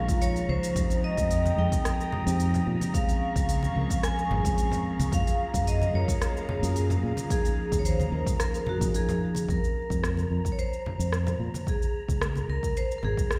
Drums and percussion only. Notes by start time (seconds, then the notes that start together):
0.08 kick, open hi-hat, shaker
0.21 open hi-hat, shaker
0.36 open hi-hat, shaker
0.63 open hi-hat, shaker
0.76 kick, open hi-hat, shaker
0.90 open hi-hat, shaker
1.17 kick, open hi-hat, shaker
1.31 open hi-hat, shaker
1.46 high conga, shaker
1.72 kick, open hi-hat, shaker
1.85 cross-stick, open hi-hat, shaker
2.01 shaker
2.12 high conga, low conga
2.27 open hi-hat, shaker
2.40 open hi-hat, shaker
2.54 open hi-hat, low conga, shaker
2.81 open hi-hat, high conga, shaker
2.94 kick, open hi-hat, shaker
3.09 open hi-hat, shaker
3.36 kick, open hi-hat, shaker
3.49 open hi-hat, shaker
3.63 high conga, shaker
3.90 kick, open hi-hat, shaker
4.03 cross-stick, open hi-hat, shaker
4.19 shaker
4.31 high conga, low conga
4.45 kick, open hi-hat, shaker
4.58 open hi-hat, shaker
4.72 open hi-hat, low conga, shaker
5.00 open hi-hat, high conga, shaker
5.12 kick, open hi-hat, shaker
5.27 open hi-hat, shaker
5.54 kick, open hi-hat, shaker
5.67 open hi-hat, shaker
5.82 high conga, shaker
6.08 kick, open hi-hat, shaker
6.22 cross-stick, open hi-hat, shaker
6.37 shaker
6.49 high conga, low conga
6.63 open hi-hat, shaker
6.76 open hi-hat, shaker
6.90 open hi-hat, low conga, shaker
7.17 open hi-hat, high conga, shaker
7.30 kick, open hi-hat, shaker
7.45 open hi-hat, shaker
7.72 kick, open hi-hat, shaker
7.85 open hi-hat, shaker
8.00 high conga, shaker
8.26 kick, open hi-hat, shaker
8.40 cross-stick, open hi-hat, shaker
8.54 open hi-hat, shaker
8.66 high conga, low conga
8.81 kick, open hi-hat, shaker
8.94 open hi-hat, shaker
9.09 open hi-hat, low conga, shaker
9.35 open hi-hat, high conga, shaker
9.49 kick, shaker
9.64 shaker
9.90 kick, shaker
10.04 cross-stick, shaker
10.17 high conga, shaker
10.45 kick, shaker
10.59 shaker
10.73 shaker
10.86 high conga, low conga
11.00 shaker
11.12 cross-stick, shaker
11.27 low conga, shaker
11.54 high conga, shaker
11.67 kick, shaker
11.82 shaker
12.09 kick, shaker
12.21 cross-stick, shaker
12.36 high conga, shaker
12.63 kick, shaker
12.77 shaker
12.91 shaker
13.03 high conga, low conga
13.17 kick, shaker
13.31 cross-stick, shaker